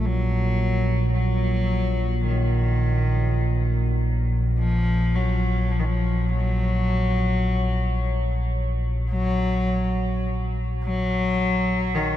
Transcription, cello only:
0.05 F#3
1.14 F#3
2.28 D#3
4.59 F3
5.15 F#3
5.72 F3
5.79 D#3
5.84 F3
6.29 F#3
9.09 F#3
10.84 F#3
11.95 D#3

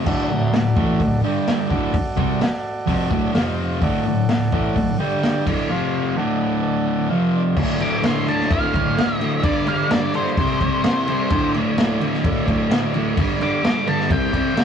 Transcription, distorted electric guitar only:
0.05 D2 A2 D3
0.30 D2 A2
0.53 D2 A2
0.76 A2 E3 A3
1.00 D2 A2
1.23 G2 D3 G3
1.70 D2 A2 D3
1.93 muted distorted electric guitar stroke
2.16 C3 G3 C4
2.86 F2 C3 F3
3.10 D2 A2 D3
3.34 F2 C3 F3
3.81 D2 A2 D3
4.06 D2 A2
4.29 D2 A2
4.52 A2 E3 A3
4.76 D2 A2
4.99 G2 D3 G3
5.46 D2 A2 D3
5.70 F2 C3 F3
6.17 D2 A2 D3
7.09 F2 C3 F3
7.57 D2 A2 D3
7.79 D2 A2 D3
8.03 D2 A2 D3
8.27 D2 A2 D3
8.50 D2 A2 D3
8.73 D2 A2 D3
8.97 D2 A2 D3
9.19 D2 A2 D3
9.42 G2 D3 G3
9.66 G2 D3 G3
9.90 G2 D3 G3
10.13 G2 D3 G3
10.37 C3 G3 C4
10.61 C3 G3 C4
10.85 C3 G3 C4
11.07 C3 G3 C4
11.30 D2 A2 D3
11.55 D2 A2 D3
11.77 D2 A2 D3
12.01 D2 A2 D3
12.24 D2 A2 D3
12.46 D2 A2 D3
12.70 D2 A2 D3
12.94 D2 A2 D3
13.16 G2 D3 G3
13.40 G2 D3 G3
13.63 G2 D3 G3
13.86 G2 D3 G3
14.10 C3 G3 C4
14.32 C3 G3 C4
14.54 C3 G3 C4

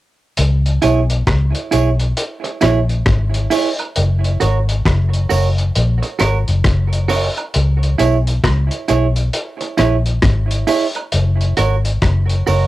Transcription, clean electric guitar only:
0.82 E4 G#4 C#5
1.71 E4 G#4 C#5
2.44 muted clean electric guitar stroke
2.61 E4 G#4 C#5
3.50 E4 G#4 C#5
4.40 F#4 A#4 C#5
5.29 F#4 A#4 C#5
6.03 muted clean electric guitar stroke
6.19 F#4 A#4 C#5
7.08 F#4 A#4 C#5
7.98 E4 G#4 C#5
8.88 E4 G#4 C#5
9.61 muted clean electric guitar stroke
9.77 E4 G#4 C#5
10.67 E4 G#4 C#5
11.57 F#4 A#4 C#5
12.47 F#4 A#4 C#5

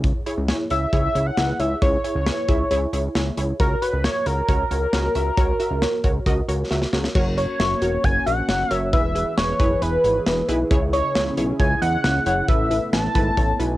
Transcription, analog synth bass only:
Already playing: C#2
0.38 C#2
0.71 C#2
0.93 C#2
1.15 C#2
1.37 C#2
1.60 C#2
1.82 C#2
2.15 C#2
2.49 C#2
2.71 C#2
2.93 C#2
3.15 C#2
3.38 C#2
3.60 C#2
3.93 C#2
4.26 C#2
4.48 C#2
4.71 C#2
4.93 C#2
5.15 C#2
5.37 C#2
5.71 C#2
6.04 C#2
6.26 C#2
6.49 C#2
6.71 C#2
6.93 C#2
7.15 F#1
7.60 F#1
7.82 E1
8.04 F#1
8.26 A#1
8.49 F#1
8.71 F#1
8.93 E1
9.38 E1
9.60 F#1
9.82 E1
10.04 G#1
10.26 E1
10.49 B1
10.71 C#2
11.15 C#2
11.37 B1
11.60 C#2
11.82 E2
12.04 C#2
12.26 F#1
12.48 A1
12.93 A1
13.15 G#1
13.37 A1
13.60 B1

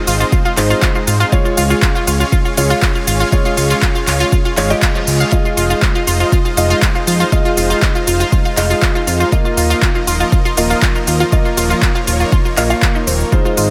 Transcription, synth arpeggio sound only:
0.07 F4 F5
0.20 F4 F5
0.32 F4 F5
0.45 F4 F5
0.57 F4 F5
0.70 F4 F5
0.82 F4 F5
0.95 F4 F5
1.07 F4 F5
1.20 F4 F5
1.32 F4 F5
1.45 F4 F5
1.57 F4 F5
1.70 F4 F5
1.82 F4 F5
1.95 F4 F5
2.07 F4 F5
2.20 F4 F5
2.32 F4 F5
2.45 F4 F5
2.57 F4 F5
2.70 F4 F5
2.82 F4 F5
2.95 F4 F5
3.07 F4 F5
3.20 F4 F5
3.32 F4 F5
3.45 F4 F5
3.57 F4 F5
3.70 F4 F5
3.82 F4 F5
3.95 F4 F5
4.07 F4 F5
4.20 F4 F5
4.32 F4 F5
4.45 F4 F5
4.57 F4 F5
4.70 G4 G5
4.82 F4 F5
4.95 F3 F4
5.20 F5 F6
5.32 F4 F5
5.45 F4 F5
5.57 F4 F5
5.70 F4 F5
5.82 F4 F5
5.95 F4 F5
6.07 F4 F5
6.20 F4 F5
6.32 F4 F5
6.45 F4 F5
6.57 F4 F5
6.70 F4 F5
6.82 F4 F5
6.95 F4 F5
7.07 F4 F5
7.20 F4 F5
7.32 F4 F5
7.45 F4 F5
7.57 F4 F5
7.70 F4 F5
7.82 F4 F5
7.95 F4 F5
8.07 F4 F5
8.20 F4 F5
8.32 F4 F5
8.45 F4 F5
8.57 F4 F5
8.70 F4 F5
8.82 F4 F5
8.95 F4 F5
9.07 F4 F5
9.20 F4 F5
9.32 F4 F5
9.45 F4 F5
9.57 F4 F5
9.70 F4 F5
9.82 F4 F5
9.95 F4 F5
10.07 F4 F5
10.20 F4 F5
10.32 F4 F5
10.45 F4 F5
10.57 F4 F5
10.70 F4 F5
10.82 F4 F5
10.95 F4 F5
11.07 F4 F5
11.20 F4 F5
11.32 F4 F5
11.45 F4 F5
11.57 F4 F5
11.70 F4 F5
11.82 F4 F5
11.95 F4 F5
12.07 F4 F5
12.20 F4 F5
12.32 F4 F5
12.45 F4 F5
12.57 F5 F6
12.70 F4 F5
12.95 D#4 D#5
13.07 C4 C5
13.32 F4 F5
13.45 F4 F5
13.57 F4 F5

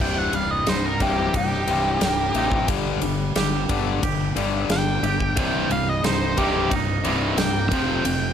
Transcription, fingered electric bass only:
0.00 C1
0.33 C1
0.67 C1
1.01 C1
1.34 C1
1.67 C1
2.01 C1
2.34 A1
2.68 G1
3.02 G1
3.35 G1
3.70 G1
4.03 G1
4.36 G1
4.69 G1
5.03 G1
5.37 C1
5.70 C1
6.04 C1
6.38 C1
6.71 C1
7.04 C1
7.37 C1
7.71 F1
8.04 F1

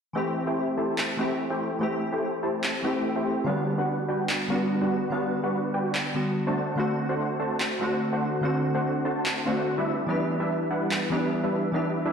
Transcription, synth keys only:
0.13 E3 A3 C4
0.17 G4
1.17 E3 A3 C4
1.21 G4
1.79 E3 A3 C4
1.83 G4
2.82 E3 A3 C4
2.86 G4
3.44 D3 G3 B3
4.48 D3 G3 B3
4.52 F#4
5.10 D3 G3 B3
6.14 D3 G3 B3 F#4
6.75 D3 A3 C4
6.79 F#4
7.79 D3 A3 C4
7.83 F#4
8.41 D3 A3 C4 F#4
9.45 D3 A3 C4 F#4
10.06 E3 B3 D4 G4
11.10 E3 B3 D4
11.14 G4
11.72 E3 B3 D4 G4

